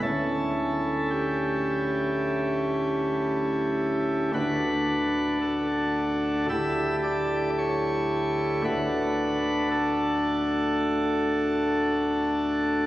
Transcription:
<<
  \new Staff \with { instrumentName = "Pipe organ" } { \time 4/4 \key d \major \tempo 4 = 56 a'4 g'2. | b'4 a'4 e''8 d''8 cis''4 | b'4 a'2. | }
  \new Staff \with { instrumentName = "Pipe organ" } { \time 4/4 \key d \major <d,, d, a cis' e'>1 | <d,, d, a d' fis'>2 <d,, d, a e' g'>2 | <d,, d, a d' fis'>1 | }
>>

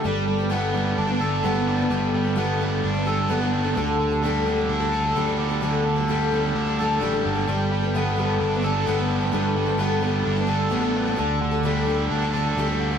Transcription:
<<
  \new Staff \with { instrumentName = "Twelve-string acoustic guitar" } { \time 4/4 \key g \major \tempo 4 = 130 <g b d' a'>8. <b d' a'>16 <g b d' a'>8 <g b d' a'>8. <b d' a'>16 <g b d' a'>8 <g b d' a'>16 <b d' a'>8 <b d' a'>16 | <g b d' a'>8. <b d' a'>16 <g b d' a'>8 <g b d' a'>8. <b d' a'>16 <g b d' a'>8 <g b d' a'>16 <b d' a'>8 <b d' a'>16 | <d g d' a'>8. <g d' a'>16 <d g d' a'>8 <d g d' a'>16 <g d' a'>8 <g d' a'>16 <d g d' a'>8 <d g d' a'>16 <g d' a'>8 <g d' a'>16 | <d g d' a'>8. <g d' a'>16 <d g d' a'>8 <d g d' a'>16 <g d' a'>8 <g d' a'>16 <d g d' a'>8 <d g d' a'>16 <g d' a'>8 <g d' a'>16 |
<g b d' a'>8. <b d' a'>16 <g b d' a'>8 <g b d' a'>8. <b d' a'>16 <g b d' a'>8 <g b d' a'>16 <b d' a'>8 <b d' a'>16 | <g b d' a'>8. <b d' a'>16 <g b d' a'>8 <g b d' a'>8. <b d' a'>16 <g b d' a'>8 <g b d' a'>16 <b d' a'>8 <b d' a'>16 | <d g d' a'>8. <g d' a'>16 <d g d' a'>8 <d g d' a'>8. <g d' a'>16 <d g d' a'>16 <g d' a'>16 <d g d' a'>16 <g d' a'>8 <g d' a'>16 | }
  \new Staff \with { instrumentName = "Overdriven electric guitar" } { \clef bass \time 4/4 \key g \major g8 g8 b8 g8 d'8 a'8 b8 g8 | g8 g8 b8 g8 d'8 a'8 b8 g8 | d8 d8 g8 d8 d'8 a'8 g8 d8 | d8 d8 g8 d8 d'8 a'8 g8 d8 |
g8 g8 b8 g8 d'8 a'8 b8 g8 | g8 g8 b8 g8 d'8 a'8 b8 g8 | d8 d8 g8 d8 d'8 a'8 g8 d8 | }
  \new Staff \with { instrumentName = "Picked electric bass" } { \clef bass \time 4/4 \key g \major g,,2 g,,4 g,,4 | g,,2 g,,4 g,,4 | d,2 d,4 d,4 | d,2 d,4 a,,8 g,,8 |
g,,2 g,,4 g,,4 | g,,2 g,,4 a,,4 | d,2 d,4 d,4 | }
>>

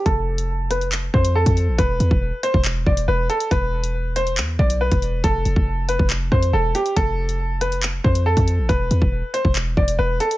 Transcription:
<<
  \new Staff \with { instrumentName = "Grand piano" } { \time 4/4 \key f \lydian \tempo 4 = 139 a'4. b'8 r8 c''8 a'4 | b'4. c''8 r8 d''8 b'8 a'8 | b'4. c''8 r8 d''8 b'4 | a'4. b'8 r8 c''8 a'8 g'8 |
a'4. b'8 r8 c''8 a'4 | b'4. c''8 r8 d''8 b'8 a'8 | }
  \new Staff \with { instrumentName = "808-style bass" } { \clef bass \time 4/4 \key f \lydian f,,2~ f,,8 f,8. f,8 a,,16 | e,,8 e,16 e,,8 r8 e,,8. e,,8 e,,8 r8 | e,,2 e,8 b,,8. e,,8. | f,,8 f,,16 f,,4 f,,8. f,8 e,,8 r8 |
f,,2~ f,,8 f,8. f,8 a,,16 | e,,8 e,16 e,,8 r8 e,,8. e,,8 e,,8 r8 | }
  \new DrumStaff \with { instrumentName = "Drums" } \drummode { \time 4/4 <hh bd>8. hh16 r8 <hh ss>16 hh16 <hc hh>8 bd16 hh16 r16 <hh bd>16 hh8 | <hh bd>8 hh16 bd16 r8 hh16 bd16 hc8 bd16 hh16 r8 hh16 hh16 | <hh bd>8. hh16 r8 hh16 hh16 hc8 bd16 hh16 r16 <hh bd>16 hh8 | <hh bd>8 hh16 bd16 r8 hh16 bd16 hc8 bd16 hh16 r8 hh16 hh16 |
<hh bd>8. hh16 r8 <hh ss>16 hh16 <hc hh>8 bd16 hh16 r16 <hh bd>16 hh8 | <hh bd>8 hh16 bd16 r8 hh16 bd16 hc8 bd16 hh16 r8 hh16 hh16 | }
>>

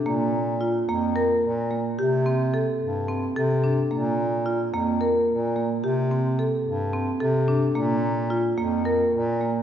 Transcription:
<<
  \new Staff \with { instrumentName = "Marimba" } { \time 7/8 \key bes \lydian \tempo 4 = 109 bes4 f'8 bes8 bes'4 bes8 | g'8 c'8 a'4 c'8 a'8 d'8 | bes4 f'8 bes8 bes'4 bes8 | g'8 c'8 a'4 c'8 a'8 d'8 |
bes4 f'8 bes8 bes'4 bes8 | }
  \new Staff \with { instrumentName = "Bass clarinet" } { \clef bass \time 7/8 \key bes \lydian bes,4. f,4 bes,4 | c4. g,4 c4 | bes,4. f,4 bes,4 | c4. g,4 c4 |
bes,4. f,4 bes,4 | }
>>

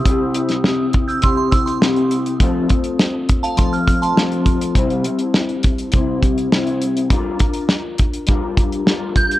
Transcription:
<<
  \new Staff \with { instrumentName = "Glockenspiel" } { \time 4/4 \key c \mixolydian \tempo 4 = 102 r1 | r1 | r1 | r2. r8 g'''8 | }
  \new Staff \with { instrumentName = "Synth bell" } { \time 4/4 \key c \mixolydian r4. r16 <e''' g'''>16 <c''' e'''>16 c'''16 <c''' e'''>16 c'''4~ c'''16 | r4. r16 <f'' a''>16 <a'' c'''>16 f'''16 f'''16 <a'' c'''>4~ <a'' c'''>16 | r1 | r1 | }
  \new Staff \with { instrumentName = "Clean electric guitar" } { \time 4/4 \key c \mixolydian <c c' e' g'>2 <c c' e' g'>4 <c c' e' g'>4 | <f a c' f'>8 <a c' f'>4. <f a c' f'>4 <f a c' f'>4 | <c g c' e'>8 <g c' e'>4. <c g c' e'>4 <c g c' e'>4 | <g d' f' bes'>8 <d' f' bes'>4. <g d' f' bes'>4 <g d' f' bes'>4 | }
  \new DrumStaff \with { instrumentName = "Drums" } \drummode { \time 4/4 <hh bd>8 hh16 <hh sn>16 sn8 <hh bd>16 hh16 <hh bd>8 <hh bd>16 hh16 sn16 hh16 hh16 hh16 | <hh bd>8 <hh bd>16 hh16 sn8 <hh bd>16 hh16 <hh bd>16 hh16 <hh bd>16 hh16 sn16 hh16 <hh bd>16 hh16 | <hh bd>16 hh16 hh16 hh16 sn16 hh16 <hh bd>16 hh16 <hh bd>8 <hh bd>16 hh16 sn16 hh16 hh16 hh16 | <hh bd>8 <hh bd>16 hh16 sn8 <hh bd>16 hh16 <hh bd>8 <hh bd>16 hh16 sn8 <hh bd>16 hh16 | }
>>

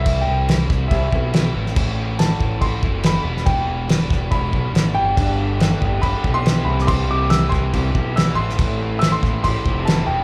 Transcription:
<<
  \new Staff \with { instrumentName = "Upright piano" } { \time 4/4 \key a \dorian \tempo 4 = 141 e''8 g''4 r8 e''4. r8 | r4 a''4 c'''4 b''4 | g''2 b''4. g''8~ | g''2 b''8. c'''8. b''16. d'''32 |
c'''8 d'''8 e'''8 c'''4 r8 e'''8 c'''8~ | c'''4 e'''16 c'''8. c'''4 a''8 g''8 | }
  \new Staff \with { instrumentName = "Overdriven electric guitar" } { \time 4/4 \key a \dorian <c e g c' e'>8 <g c' e'>8 <c e g c' e'>8 <g c' e'>8 <e g c' e'>8 <c e g c' e'>8 <e g c' e'>8 <a, e a c' e'>8 | <a, e a c' e'>8 <a c' e'>8 <a, e a c' e'>8 <a c' e'>8 <e a c' e'>8 <a, e a c' e'>8 <e a c' e'>8 <e, b, e g b e'>8 | <e, b, e g b e'>8 <e g b e'>8 <e, b, e g b e'>8 <e g b e'>8 <e g b e'>8 <e, b, e g b e'>8 <e g b e'>8 <e g b e'>8 | <g, d g b d' g'>8 <g b d' g'>8 <g, d g b d' g'>8 <g b d' g'>8 <g b d' g'>8 <g, d g b d' g'>8 <g b d' g'>8 <c e g c' e'>8 |
<c e g c' e'>8 <g c' e'>8 <c e g c' e'>8 <g c' e'>8 <e g c' e'>8 <c e g c' e'>8 <e g c' e'>8 <a, e a c' e'>8 | <a, e a c' e'>8 <a c' e'>8 <a, e a c' e'>8 <a c' e'>8 <e a c' e'>8 <a, e a c' e'>8 <e a c' e'>8 <e, b, e g b e'>8 | }
  \new Staff \with { instrumentName = "Overdriven electric guitar" } { \clef bass \time 4/4 \key a \dorian r1 | r1 | r1 | g,8 d8 e8 b8 g'8 b8 e8 c8 |
c8 e8 e4 g'4 e8 a,8 | a,8 e8 e8 c'8 g'8 c'8 e8 e,8 | }
  \new Staff \with { instrumentName = "Fingered electric bass" } { \clef bass \time 4/4 \key a \dorian c,8 c,4 c,8 c,8 b,,4 a,,8~ | a,,4. a,,8 a,,16 r16 fis,,4 e,,8~ | e,,8 e,,4 e,,8 e,,8 b,,8 a,,8 g,,8 | g,,4. g,,8 g,,16 r16 b,,4 c,8~ |
c,8 c,4 c,8 c,8 b,,4 a,,8~ | a,,4. a,,8 a,,16 r16 f,,4 e,,8 | }
  \new DrumStaff \with { instrumentName = "Drums" } \drummode { \time 4/4 <cymc bd>4 <cymc sn>8 <bd sn>8 <cymc bd>8 bd8 <cymc sn>8. sn16 | <cymc bd>4 <cymc sn>8 bd8 <cymc bd>8 bd8 <cymc sn>8. sn16 | <cymc bd>4 <cymc sn>8 <bd sn>8 <cymc bd>8 bd8 <cymc sn>4 | <cymc bd>4 <cymc sn>8 bd8 <cymc bd>8 bd8 <cymc sn>8. sn16 |
<cymc bd>4 <cymc sn>8 <bd sn>8 <cymc bd>8 bd8 <cymc sn>8. sn16 | <cymc bd>4 <cymc sn>8 <bd sn>8 <cymc bd>8 bd8 <cymc sn>4 | }
>>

